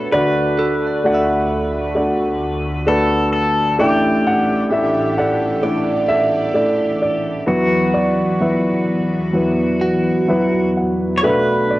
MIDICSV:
0, 0, Header, 1, 5, 480
1, 0, Start_track
1, 0, Tempo, 920245
1, 62, Time_signature, 4, 2, 24, 8
1, 3901, Tempo, 938967
1, 6107, End_track
2, 0, Start_track
2, 0, Title_t, "Clean electric guitar"
2, 0, Program_c, 0, 27
2, 0, Note_on_c, 0, 71, 74
2, 283, Note_off_c, 0, 71, 0
2, 305, Note_on_c, 0, 69, 74
2, 452, Note_on_c, 0, 74, 42
2, 595, Note_on_c, 0, 76, 49
2, 1465, Note_off_c, 0, 69, 0
2, 1598, Note_off_c, 0, 74, 0
2, 1730, Note_off_c, 0, 76, 0
2, 2456, Note_on_c, 0, 67, 49
2, 2937, Note_on_c, 0, 74, 64
2, 3625, Note_off_c, 0, 67, 0
2, 4105, Note_off_c, 0, 74, 0
2, 5093, Note_on_c, 0, 66, 67
2, 6039, Note_off_c, 0, 66, 0
2, 6107, End_track
3, 0, Start_track
3, 0, Title_t, "Pedal steel guitar"
3, 0, Program_c, 1, 26
3, 0, Note_on_c, 1, 69, 77
3, 64, Note_on_c, 1, 71, 92
3, 119, Note_off_c, 1, 69, 0
3, 1502, Note_on_c, 1, 69, 82
3, 1541, Note_off_c, 1, 71, 0
3, 1729, Note_off_c, 1, 69, 0
3, 1736, Note_on_c, 1, 69, 79
3, 1979, Note_on_c, 1, 67, 83
3, 1982, Note_off_c, 1, 69, 0
3, 3901, Note_on_c, 1, 66, 65
3, 3958, Note_off_c, 1, 67, 0
3, 5556, Note_off_c, 1, 66, 0
3, 5791, Note_on_c, 1, 73, 72
3, 5822, Note_off_c, 1, 73, 0
3, 5824, Note_on_c, 1, 71, 87
3, 6107, Note_off_c, 1, 71, 0
3, 6107, End_track
4, 0, Start_track
4, 0, Title_t, "Upright piano"
4, 0, Program_c, 2, 0
4, 0, Control_c, 2, 64, 127
4, 0, Note_on_c, 2, 57, 62
4, 0, Note_on_c, 2, 62, 57
4, 0, Note_on_c, 2, 66, 55
4, 0, Note_on_c, 2, 69, 69
4, 0, Note_on_c, 2, 71, 71
4, 0, Note_on_c, 2, 73, 80
4, 53, Note_off_c, 2, 71, 0
4, 62, Note_off_c, 2, 57, 0
4, 62, Note_on_c, 2, 57, 84
4, 64, Note_off_c, 2, 62, 0
4, 64, Note_on_c, 2, 62, 74
4, 65, Note_on_c, 2, 38, 57
4, 66, Note_on_c, 2, 50, 55
4, 68, Note_off_c, 2, 66, 0
4, 68, Control_c, 2, 64, 0
4, 68, Note_on_c, 2, 66, 74
4, 69, Note_on_c, 2, 74, 90
4, 71, Note_off_c, 2, 69, 0
4, 71, Note_off_c, 2, 73, 0
4, 73, Note_on_c, 2, 69, 57
4, 176, Control_c, 2, 64, 127
4, 475, Note_off_c, 2, 57, 0
4, 476, Note_off_c, 2, 62, 0
4, 478, Note_off_c, 2, 66, 0
4, 479, Note_off_c, 2, 74, 0
4, 541, Note_on_c, 2, 57, 64
4, 542, Note_on_c, 2, 62, 58
4, 547, Note_on_c, 2, 66, 62
4, 549, Note_on_c, 2, 74, 74
4, 551, Note_off_c, 2, 69, 0
4, 552, Note_on_c, 2, 78, 86
4, 558, Note_on_c, 2, 69, 58
4, 952, Note_off_c, 2, 57, 0
4, 953, Note_off_c, 2, 62, 0
4, 956, Note_off_c, 2, 66, 0
4, 957, Note_off_c, 2, 74, 0
4, 1016, Note_on_c, 2, 57, 63
4, 1018, Note_on_c, 2, 62, 57
4, 1020, Note_on_c, 2, 66, 57
4, 1022, Note_on_c, 2, 74, 73
4, 1430, Note_off_c, 2, 57, 0
4, 1431, Note_off_c, 2, 62, 0
4, 1432, Note_off_c, 2, 66, 0
4, 1433, Note_off_c, 2, 74, 0
4, 1495, Note_on_c, 2, 57, 78
4, 1497, Note_on_c, 2, 62, 69
4, 1499, Note_on_c, 2, 66, 69
4, 1501, Note_on_c, 2, 71, 86
4, 1721, Note_off_c, 2, 78, 0
4, 1724, Note_off_c, 2, 69, 0
4, 1909, Note_off_c, 2, 57, 0
4, 1910, Note_off_c, 2, 62, 0
4, 1911, Note_off_c, 2, 66, 0
4, 1912, Note_off_c, 2, 71, 0
4, 1956, Note_off_c, 2, 38, 0
4, 1956, Note_off_c, 2, 50, 0
4, 1975, Note_on_c, 2, 57, 86
4, 1980, Note_on_c, 2, 33, 59
4, 1980, Note_on_c, 2, 45, 60
4, 1980, Note_on_c, 2, 62, 83
4, 1981, Control_c, 2, 64, 0
4, 1981, Note_on_c, 2, 64, 77
4, 1984, Note_on_c, 2, 74, 94
4, 1984, Note_on_c, 2, 79, 88
4, 1986, Note_on_c, 2, 76, 66
4, 2067, Control_c, 2, 64, 127
4, 2202, Note_off_c, 2, 79, 0
4, 2227, Note_on_c, 2, 78, 92
4, 2389, Note_off_c, 2, 57, 0
4, 2391, Note_off_c, 2, 62, 0
4, 2392, Note_off_c, 2, 64, 0
4, 2393, Note_off_c, 2, 74, 0
4, 2456, Note_off_c, 2, 76, 0
4, 2456, Note_on_c, 2, 57, 68
4, 2459, Note_on_c, 2, 62, 59
4, 2462, Note_on_c, 2, 64, 57
4, 2464, Note_on_c, 2, 74, 72
4, 2464, Note_on_c, 2, 76, 90
4, 2468, Note_off_c, 2, 78, 0
4, 2700, Note_off_c, 2, 74, 0
4, 2702, Note_on_c, 2, 78, 88
4, 2706, Note_on_c, 2, 69, 65
4, 2707, Note_off_c, 2, 76, 0
4, 2708, Note_on_c, 2, 74, 65
4, 2871, Note_off_c, 2, 57, 0
4, 2872, Note_off_c, 2, 62, 0
4, 2874, Note_off_c, 2, 64, 0
4, 2934, Note_off_c, 2, 74, 0
4, 2936, Note_on_c, 2, 57, 66
4, 2937, Note_on_c, 2, 62, 58
4, 2939, Note_on_c, 2, 64, 57
4, 2942, Note_on_c, 2, 74, 72
4, 3174, Note_off_c, 2, 69, 0
4, 3174, Note_on_c, 2, 76, 101
4, 3182, Note_on_c, 2, 69, 65
4, 3194, Note_off_c, 2, 78, 0
4, 3351, Note_off_c, 2, 57, 0
4, 3352, Note_off_c, 2, 62, 0
4, 3353, Note_off_c, 2, 64, 0
4, 3354, Note_off_c, 2, 74, 0
4, 3412, Note_on_c, 2, 57, 63
4, 3415, Note_on_c, 2, 62, 56
4, 3416, Note_on_c, 2, 64, 56
4, 3418, Note_on_c, 2, 74, 73
4, 3655, Note_off_c, 2, 74, 0
4, 3662, Note_on_c, 2, 74, 75
4, 3672, Note_off_c, 2, 76, 0
4, 3831, Note_off_c, 2, 57, 0
4, 3832, Note_off_c, 2, 62, 0
4, 3833, Note_off_c, 2, 64, 0
4, 3881, Note_off_c, 2, 33, 0
4, 3881, Note_off_c, 2, 45, 0
4, 3882, Note_off_c, 2, 69, 0
4, 3896, Note_on_c, 2, 71, 78
4, 3898, Note_on_c, 2, 54, 85
4, 3901, Note_on_c, 2, 40, 53
4, 3901, Note_on_c, 2, 59, 76
4, 3902, Note_on_c, 2, 64, 72
4, 3904, Note_on_c, 2, 66, 53
4, 3905, Control_c, 2, 64, 0
4, 3909, Note_off_c, 2, 74, 0
4, 3991, Control_c, 2, 64, 127
4, 4136, Note_on_c, 2, 74, 81
4, 4142, Note_off_c, 2, 71, 0
4, 4309, Note_off_c, 2, 54, 0
4, 4311, Note_off_c, 2, 59, 0
4, 4311, Note_off_c, 2, 64, 0
4, 4374, Note_on_c, 2, 54, 63
4, 4374, Note_on_c, 2, 59, 59
4, 4377, Note_on_c, 2, 76, 72
4, 4380, Note_on_c, 2, 64, 60
4, 4381, Note_on_c, 2, 71, 68
4, 4382, Note_off_c, 2, 74, 0
4, 4787, Note_off_c, 2, 54, 0
4, 4788, Note_off_c, 2, 59, 0
4, 4790, Note_off_c, 2, 64, 0
4, 4791, Note_off_c, 2, 71, 0
4, 4835, Note_off_c, 2, 66, 0
4, 4848, Note_on_c, 2, 54, 63
4, 4849, Note_on_c, 2, 59, 57
4, 4853, Note_on_c, 2, 64, 57
4, 4855, Note_on_c, 2, 71, 68
4, 5266, Note_off_c, 2, 54, 0
4, 5266, Note_off_c, 2, 59, 0
4, 5268, Note_off_c, 2, 64, 0
4, 5269, Note_off_c, 2, 71, 0
4, 5328, Note_off_c, 2, 76, 0
4, 5333, Note_on_c, 2, 54, 74
4, 5336, Note_on_c, 2, 59, 66
4, 5336, Note_on_c, 2, 76, 59
4, 5338, Note_on_c, 2, 64, 64
4, 5341, Note_on_c, 2, 71, 78
4, 5560, Note_off_c, 2, 76, 0
4, 5584, Note_on_c, 2, 78, 58
4, 5751, Note_off_c, 2, 54, 0
4, 5752, Note_off_c, 2, 59, 0
4, 5753, Note_off_c, 2, 64, 0
4, 5755, Note_off_c, 2, 71, 0
4, 5798, Note_off_c, 2, 40, 0
4, 5805, Note_off_c, 2, 78, 0
4, 5818, Note_on_c, 2, 57, 77
4, 5822, Note_on_c, 2, 47, 51
4, 5822, Note_on_c, 2, 62, 74
4, 5822, Note_on_c, 2, 76, 73
4, 5823, Note_on_c, 2, 35, 53
4, 5823, Note_on_c, 2, 66, 72
4, 5825, Control_c, 2, 64, 0
4, 5825, Note_on_c, 2, 71, 88
4, 5826, Note_on_c, 2, 69, 51
4, 5926, Control_c, 2, 64, 127
4, 6060, Note_on_c, 2, 74, 76
4, 6069, Note_off_c, 2, 76, 0
4, 6107, Note_off_c, 2, 35, 0
4, 6107, Note_off_c, 2, 47, 0
4, 6107, Note_off_c, 2, 57, 0
4, 6107, Note_off_c, 2, 62, 0
4, 6107, Note_off_c, 2, 66, 0
4, 6107, Note_off_c, 2, 69, 0
4, 6107, Note_off_c, 2, 71, 0
4, 6107, Note_off_c, 2, 74, 0
4, 6107, End_track
5, 0, Start_track
5, 0, Title_t, "Analog synth pad"
5, 0, Program_c, 3, 89
5, 0, Note_on_c, 3, 57, 69
5, 62, Note_on_c, 3, 38, 74
5, 62, Note_on_c, 3, 66, 65
5, 63, Note_on_c, 3, 50, 69
5, 63, Note_on_c, 3, 69, 80
5, 1952, Note_off_c, 3, 57, 0
5, 1956, Note_off_c, 3, 38, 0
5, 1956, Note_off_c, 3, 66, 0
5, 1957, Note_off_c, 3, 50, 0
5, 1976, Note_on_c, 3, 76, 82
5, 1978, Note_on_c, 3, 45, 74
5, 1979, Note_on_c, 3, 52, 72
5, 1980, Note_on_c, 3, 62, 69
5, 2927, Note_off_c, 3, 76, 0
5, 2927, Note_on_c, 3, 74, 87
5, 3879, Note_off_c, 3, 69, 0
5, 3882, Note_off_c, 3, 45, 0
5, 3883, Note_off_c, 3, 52, 0
5, 3883, Note_off_c, 3, 62, 0
5, 3886, Note_off_c, 3, 74, 0
5, 3896, Note_on_c, 3, 40, 73
5, 3896, Note_on_c, 3, 52, 65
5, 3896, Note_on_c, 3, 71, 82
5, 3899, Note_on_c, 3, 66, 66
5, 3901, Note_on_c, 3, 59, 66
5, 5797, Note_off_c, 3, 40, 0
5, 5797, Note_off_c, 3, 52, 0
5, 5797, Note_off_c, 3, 71, 0
5, 5798, Note_off_c, 3, 66, 0
5, 5799, Note_off_c, 3, 59, 0
5, 5822, Note_on_c, 3, 47, 74
5, 5822, Note_on_c, 3, 71, 79
5, 5823, Note_on_c, 3, 57, 68
5, 5824, Note_on_c, 3, 54, 64
5, 5825, Note_on_c, 3, 62, 69
5, 6107, Note_off_c, 3, 47, 0
5, 6107, Note_off_c, 3, 54, 0
5, 6107, Note_off_c, 3, 57, 0
5, 6107, Note_off_c, 3, 62, 0
5, 6107, Note_off_c, 3, 71, 0
5, 6107, End_track
0, 0, End_of_file